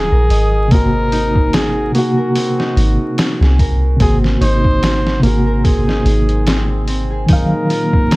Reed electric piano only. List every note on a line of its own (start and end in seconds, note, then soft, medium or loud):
0.00 0.66 D#3 medium
0.00 0.68 F#3 medium
0.00 0.69 F5 loud
0.68 1.89 C3 medium
0.68 1.90 A#3 medium
0.75 1.92 F#4 medium
1.92 3.95 C3 medium
1.92 3.96 A#3 medium
1.99 3.98 F#4 loud
3.97 5.18 C3 medium
3.97 5.19 A#3 medium
4.03 5.21 F#4 medium
5.20 7.23 C3 medium
5.20 7.25 A#3 medium
5.27 7.26 F#4 medium
7.26 8.16 D#3 medium
7.26 8.16 F#3 medium
7.33 8.16 F5 medium